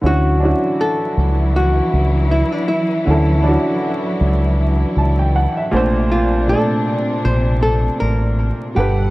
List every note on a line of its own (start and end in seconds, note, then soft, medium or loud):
0.01 0.52 D2 medium
0.01 0.35 D3 medium
0.01 5.69 E3 medium
0.01 5.69 F#3 medium
0.01 0.36 C#4 medium
0.01 5.69 E4 medium
0.01 0.37 E4 medium
0.06 0.80 F#4 loud
0.06 0.37 F#4 medium
0.40 1.70 C#4 medium
0.40 1.69 D4 medium
0.40 1.71 E4 medium
0.45 1.72 F#4 medium
0.81 1.56 A4 loud
1.17 1.80 C#2 medium
1.56 2.28 F#4 medium
1.94 2.42 C#2 medium
2.31 2.52 E4 medium
2.52 2.68 D4 medium
2.68 4.16 E4 medium
3.05 3.56 D2 loud
3.05 3.39 D3 medium
3.05 3.39 C#4 medium
3.05 3.40 E4 medium
3.10 3.41 A4 medium
3.43 4.73 C#4 medium
3.43 4.73 D4 medium
3.43 4.74 E4 medium
3.48 4.75 F#4 medium
4.21 4.83 C#2 medium
4.97 5.46 C#2 medium
4.97 5.17 A5 medium
5.19 5.34 G5 medium
5.36 5.55 F#5 medium
5.57 5.72 E5 medium
5.71 6.53 A#1 medium
5.71 6.37 A#2 medium
5.71 8.73 C3 medium
5.71 6.38 A3 medium
5.71 8.74 D4 medium
5.71 6.39 D4 medium
5.76 6.40 C5 loud
6.12 6.50 F4 medium
6.48 7.77 A#2 medium
6.48 7.78 A3 medium
6.48 7.79 D4 medium
6.48 7.21 A4 loud
6.53 7.79 D5 medium
7.25 7.88 A#1 medium
7.25 7.62 C5 loud
7.63 8.00 A4 loud
8.00 8.50 A1 medium
8.00 8.79 A#4 loud
8.75 9.10 G1 loud
8.75 9.10 B2 medium
8.75 9.10 G3 medium
8.75 9.10 G4 medium
8.75 9.10 A4 medium
8.75 9.10 F#5 medium
8.80 9.10 B4 medium